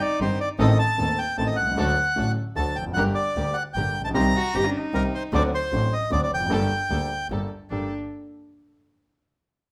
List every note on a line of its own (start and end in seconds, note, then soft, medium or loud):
0.00 0.57 D#4 medium
0.00 0.19 D5 medium
0.20 0.37 G1 medium
0.20 0.37 G2 medium
0.20 0.37 D#3 soft
0.20 0.37 G3 soft
0.20 0.37 C4 soft
0.20 0.37 D#4 soft
0.20 0.37 G4 medium
0.20 0.39 C5 medium
0.40 0.49 D5 medium
0.59 0.76 A1 medium
0.59 0.76 A2 medium
0.59 0.76 D#3 medium
0.59 0.76 A3 medium
0.59 0.76 C4 medium
0.59 0.76 D#4 medium
0.59 0.76 A4 medium
0.59 0.78 D#5 medium
0.79 1.19 A5 medium
0.98 1.15 D#1 medium
0.98 1.15 D#2 medium
0.98 1.15 D#3 soft
0.98 1.15 A3 soft
0.98 1.15 C4 soft
0.98 1.15 D#4 soft
0.98 1.15 A4 soft
1.18 1.37 G5 medium
1.37 1.54 A1 medium
1.37 1.55 A1 medium
1.37 1.54 A2 medium
1.37 1.54 D#3 soft
1.37 1.54 A3 soft
1.37 1.54 C4 soft
1.37 1.55 C4 soft
1.37 1.55 D#4 soft
1.37 1.54 A4 medium
1.37 1.55 A4 soft
1.37 1.47 A5 medium
1.47 1.56 D#5 medium
1.56 1.78 C2 medium
1.56 2.32 F#5 medium
1.63 1.68 B1 soft
1.67 1.72 C2 medium
1.71 1.77 C#2 medium
1.77 1.94 D2 medium
1.77 1.94 D3 medium
1.77 1.94 F#3 medium
1.77 1.94 A3 medium
1.77 1.94 D4 medium
1.77 1.94 F#4 medium
1.77 1.94 A4 medium
2.16 2.33 A1 soft
2.16 2.34 A1 medium
2.16 2.33 A2 soft
2.16 2.33 D3 soft
2.16 2.33 F#3 soft
2.16 2.33 A3 soft
2.16 2.33 D4 soft
2.16 2.33 F#4 soft
2.16 2.34 A4 soft
2.55 2.73 D2 medium
2.55 2.74 D2 medium
2.55 2.73 D3 soft
2.55 2.73 F#3 soft
2.55 2.73 A3 soft
2.55 2.73 D4 soft
2.55 2.73 F#4 soft
2.55 2.73 A4 soft
2.55 2.77 A5 medium
2.76 2.96 F1 soft
2.76 2.85 G5 medium
2.81 2.86 E2 soft
2.86 2.91 F2 medium
2.92 2.97 F#2 medium
2.92 3.03 F#5 medium
2.96 3.13 G1 medium
2.96 3.13 G2 medium
2.96 3.13 D3 medium
2.96 3.13 G3 medium
2.96 3.13 A#3 medium
2.96 3.13 D4 medium
2.96 3.13 G4 medium
2.96 3.14 G4 medium
2.96 3.13 A#4 medium
3.15 3.56 D5 medium
3.36 3.53 D2 medium
3.36 3.53 D3 soft
3.36 3.53 G3 soft
3.36 3.53 A#3 soft
3.36 3.53 D4 soft
3.36 3.53 G4 soft
3.36 3.53 A#4 medium
3.54 3.63 F#5 medium
3.73 3.92 G1 medium
3.73 3.93 G1 medium
3.73 3.93 G2 medium
3.73 3.93 D3 soft
3.73 3.93 G3 soft
3.73 3.93 A#3 soft
3.73 3.92 D4 soft
3.73 3.92 G4 soft
3.73 3.93 G4 medium
3.73 3.92 A#4 soft
3.73 4.02 G5 medium
3.96 4.15 A#1 medium
4.01 4.06 A1 soft
4.01 4.09 A5 medium
4.05 4.10 A#1 medium
4.10 4.15 B1 medium
4.10 4.31 C3 medium
4.10 4.31 D#3 medium
4.10 4.31 C4 medium
4.14 4.31 C2 medium
4.14 4.32 C2 medium
4.14 4.31 G3 medium
4.14 4.32 D#4 medium
4.14 4.32 G4 medium
4.14 4.32 C5 medium
4.14 4.70 A#5 loud
4.36 4.57 F#4 medium
4.54 4.71 G1 medium
4.54 4.71 G2 medium
4.54 4.71 D#3 soft
4.54 4.71 G3 soft
4.54 4.71 C4 soft
4.54 4.71 D#4 soft
4.54 4.71 G4 medium
4.54 4.71 G4 soft
4.54 4.65 G4 medium
4.54 4.71 C5 soft
4.63 4.67 C#4 medium
4.63 4.78 D4 medium
4.77 5.44 D#4 medium
4.93 5.10 C2 medium
4.93 5.10 C3 medium
4.93 5.10 D#3 soft
4.93 5.10 G3 soft
4.93 5.10 C4 soft
4.93 5.10 D#4 soft
4.93 5.10 G4 medium
4.93 5.10 G4 soft
4.93 5.03 A#4 medium
4.93 5.11 C5 soft
5.15 5.23 C5 medium
5.33 5.49 D2 medium
5.33 5.50 D2 medium
5.33 5.50 D3 medium
5.33 5.49 F#3 medium
5.33 5.49 C4 medium
5.33 5.50 D4 medium
5.33 5.50 F#4 medium
5.33 5.50 A4 medium
5.33 5.50 C5 medium
5.33 5.43 D5 medium
5.54 5.94 C5 medium
5.72 5.89 A1 medium
5.72 5.89 A2 medium
5.72 5.89 F#3 soft
5.72 5.89 C4 soft
5.72 5.89 D4 soft
5.72 5.89 F#4 soft
5.72 5.89 A4 medium
5.72 5.89 C5 soft
5.93 6.11 D#5 medium
6.10 6.28 D2 medium
6.10 6.28 D3 medium
6.10 6.27 F#3 soft
6.10 6.28 C4 soft
6.10 6.28 D4 soft
6.10 6.28 F#4 soft
6.10 6.28 A4 soft
6.10 6.28 C5 medium
6.10 6.21 D5 medium
6.23 6.31 D5 medium
6.32 6.50 F1 medium
6.32 6.41 E2 soft
6.32 7.27 G5 medium
6.40 6.45 F2 medium
6.46 6.51 F#2 medium
6.46 6.67 G3 medium
6.46 6.67 A#3 medium
6.46 6.67 D4 medium
6.50 6.67 G1 medium
6.50 6.67 G2 medium
6.50 6.67 A#3 medium
6.50 6.67 G4 medium
6.50 6.67 A4 medium
6.50 6.68 A4 medium
6.90 7.07 D2 medium
6.90 7.07 D3 soft
6.90 7.07 G3 soft
6.90 7.07 A#3 soft
6.90 7.07 D4 soft
6.90 7.07 G4 soft
6.90 7.07 A4 soft
6.90 7.08 A4 soft
7.30 7.47 G1 medium
7.30 7.48 G1 medium
7.30 7.48 G2 medium
7.30 7.47 G3 soft
7.30 7.47 A#3 soft
7.30 7.48 D4 soft
7.30 7.47 G4 soft
7.30 7.47 A4 soft
7.30 7.48 A4 soft
7.70 7.87 G1 soft
7.70 7.88 G2 soft
7.70 7.87 A#3 soft
7.70 7.88 A#3 soft
7.70 7.89 D4 medium
7.70 7.87 G4 soft
7.70 7.88 G4 soft
7.70 7.87 A4 medium
7.70 7.88 A4 medium